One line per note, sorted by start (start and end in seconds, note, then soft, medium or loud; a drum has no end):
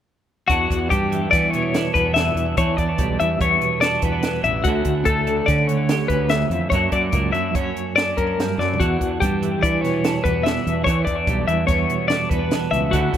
0.48 0.67 E2 medium
0.48 2.16 E2 medium
0.48 1.75 D4 medium
0.48 0.90 F#4 medium
0.48 kick loud
0.48 closed hi-hat medium
0.70 0.87 E2 medium
0.70 kick medium
0.70 closed hi-hat medium
0.90 1.25 G2 medium
0.90 2.55 G3 soft
0.90 1.30 G4 medium
0.90 kick loud
0.90 closed hi-hat medium
1.12 2.61 E3 medium
1.12 closed hi-hat medium
1.31 1.84 E3 medium
1.31 1.97 B3 medium
1.31 1.50 D5 medium
1.31 kick loud
1.31 snare soft
1.31 closed hi-hat medium
1.50 1.94 C#5 medium
1.50 closed hi-hat medium
1.55 2.55 B2 medium
1.74 2.17 D4 medium
1.74 snare loud
1.74 closed hi-hat medium
1.94 2.29 E2 medium
1.94 3.40 B3 medium
1.94 2.14 B4 medium
1.94 kick medium
1.94 closed hi-hat medium
2.14 2.55 E2 medium
2.14 2.57 D4 medium
2.14 2.56 E5 medium
2.14 snare medium
2.14 closed hi-hat medium
2.35 2.52 E2 medium
2.35 closed hi-hat medium
2.57 4.23 E2 medium
2.57 2.74 E3 medium
2.57 3.83 D4 medium
2.57 2.77 C#5 medium
2.57 kick loud
2.57 closed hi-hat medium
2.77 2.95 E2 medium
2.77 3.19 D5 medium
2.77 kick medium
2.77 closed hi-hat medium
2.98 3.16 B1 medium
2.98 4.63 G3 medium
2.98 kick loud
2.98 closed hi-hat medium
3.20 3.37 E2 medium
3.20 4.67 E3 medium
3.20 3.40 E5 medium
3.20 closed hi-hat medium
3.40 3.57 E2 medium
3.40 4.03 B3 medium
3.40 3.81 C#5 medium
3.40 kick medium
3.40 closed hi-hat medium
3.61 4.62 B2 medium
3.61 closed hi-hat soft
3.81 4.24 D4 medium
3.81 4.03 D5 medium
3.81 snare medium
3.81 closed hi-hat medium
4.02 4.19 E2 medium
4.02 4.63 B3 medium
4.02 4.44 B4 medium
4.02 kick medium
4.02 closed hi-hat medium
4.23 4.63 E2 medium
4.23 4.69 D4 medium
4.23 snare medium
4.23 closed hi-hat medium
4.44 4.61 A1 medium
4.44 4.65 E5 medium
4.44 closed hi-hat medium
4.64 4.82 D2 medium
4.64 5.67 D2 medium
4.64 5.26 D3 soft
4.64 5.07 A3 medium
4.64 5.06 F#4 medium
4.64 kick loud
4.64 closed hi-hat medium
4.68 5.48 C#4 soft
4.68 5.90 E4 medium
4.85 5.02 D2 medium
4.85 kick medium
4.85 closed hi-hat medium
5.05 5.40 D2 medium
5.05 6.71 A3 medium
5.05 5.47 A4 medium
5.05 kick loud
5.05 closed hi-hat medium
5.27 6.72 D3 medium
5.27 closed hi-hat medium
5.46 5.99 D3 medium
5.46 6.10 C#4 medium
5.46 5.67 D5 medium
5.46 kick loud
5.46 snare soft
5.46 closed hi-hat medium
5.67 6.30 D2 medium
5.67 6.09 C#5 medium
5.67 closed hi-hat medium
5.89 6.70 G4 medium
5.89 snare loud
5.89 closed hi-hat medium
6.08 6.43 D2 medium
6.08 6.71 C#4 medium
6.08 6.30 B4 medium
6.08 kick medium
6.08 closed hi-hat medium
6.29 6.52 D2 medium
6.29 6.70 E5 medium
6.29 snare loud
6.29 closed hi-hat medium
6.50 6.72 E2 medium
6.50 6.67 F2 medium
6.50 closed hi-hat medium
6.70 6.89 F#2 medium
6.70 8.38 F#2 medium
6.70 7.32 F#3 soft
6.70 7.13 A#3 medium
6.70 6.92 C#5 medium
6.70 kick loud
6.70 closed hi-hat medium
6.75 7.96 D4 medium
6.92 7.09 F#2 medium
6.92 7.32 D5 medium
6.92 kick medium
6.92 closed hi-hat medium
7.12 7.30 C#2 medium
7.12 8.77 A#3 medium
7.12 kick loud
7.12 closed hi-hat medium
7.32 7.50 F#2 medium
7.32 8.76 F#3 medium
7.32 7.55 E5 medium
7.32 closed hi-hat medium
7.55 7.72 F#2 medium
7.55 8.17 C#4 medium
7.55 7.95 C#5 medium
7.55 kick medium
7.55 closed hi-hat medium
7.77 closed hi-hat medium
7.96 8.81 D4 medium
7.96 8.17 D5 medium
7.96 snare loud
7.96 closed hi-hat medium
8.17 8.34 F#2 medium
8.17 8.77 C#4 medium
8.17 8.59 A#4 medium
8.17 kick medium
8.17 closed hi-hat medium
8.39 8.59 G2 medium
8.39 snare loud
8.39 closed hi-hat medium
8.58 8.75 F#2 medium
8.58 8.80 F#2 medium
8.58 8.80 D5 medium
8.58 snare medium
8.74 floor tom medium
8.80 10.44 E2 medium
8.80 8.97 E2 medium
8.80 10.05 D4 medium
8.80 9.20 F#4 medium
8.80 kick loud
8.80 closed hi-hat medium
9.01 9.18 E2 medium
9.01 kick medium
9.01 closed hi-hat medium
9.20 9.55 G2 medium
9.20 10.85 G3 medium
9.20 9.62 G4 medium
9.20 kick loud
9.20 closed hi-hat medium
9.42 10.89 E3 soft
9.42 closed hi-hat medium
9.63 10.13 E3 medium
9.63 10.24 B3 medium
9.63 9.81 D5 medium
9.63 kick loud
9.63 closed hi-hat medium
9.81 10.84 B2 medium
9.81 10.24 C#5 medium
9.81 snare soft
9.81 closed hi-hat medium
10.04 10.45 D4 medium
10.04 snare loud
10.04 closed hi-hat medium
10.24 10.58 E2 medium
10.24 11.70 B3 medium
10.24 10.45 B4 medium
10.24 kick medium
10.24 closed hi-hat medium
10.43 10.84 E2 medium
10.43 10.86 D4 soft
10.43 10.84 E5 medium
10.43 snare loud
10.43 closed hi-hat medium
10.67 10.83 E2 medium
10.67 closed hi-hat medium
10.84 12.51 E2 medium
10.84 11.04 E3 medium
10.84 12.10 D4 medium
10.84 11.04 C#5 medium
10.84 kick loud
10.84 closed hi-hat medium
11.05 11.24 E2 medium
11.05 11.47 D5 medium
11.05 kick medium
11.05 closed hi-hat medium
11.27 11.44 B1 medium
11.27 12.91 G3 medium
11.27 kick loud
11.27 closed hi-hat medium
11.48 11.65 E2 medium
11.48 12.91 E3 medium
11.48 11.67 E5 medium
11.48 closed hi-hat medium
11.67 11.86 E2 medium
11.67 12.32 B3 medium
11.67 12.08 C#5 medium
11.67 kick loud
11.67 snare soft
11.67 closed hi-hat medium
11.89 12.91 B2 medium
11.89 closed hi-hat medium
12.08 12.52 D4 medium
12.08 12.30 D5 medium
12.08 snare loud
12.08 closed hi-hat medium
12.30 12.48 E2 medium
12.30 12.94 B3 medium
12.30 12.71 B4 medium
12.30 kick medium
12.30 closed hi-hat medium
12.51 12.91 E2 medium
12.51 12.95 D4 soft
12.51 snare loud
12.51 closed hi-hat medium
12.71 12.89 C#2 medium
12.71 12.92 E5 medium
12.71 closed hi-hat medium
12.91 13.17 D2 medium
12.91 13.10 D2 medium
12.91 13.17 D3 medium
12.91 13.17 A3 medium
12.91 13.17 C#4 medium
12.91 13.17 F#4 medium
12.91 kick loud
12.91 closed hi-hat medium
12.96 13.17 E4 medium
13.14 13.17 D2 medium
13.14 kick medium
13.14 closed hi-hat medium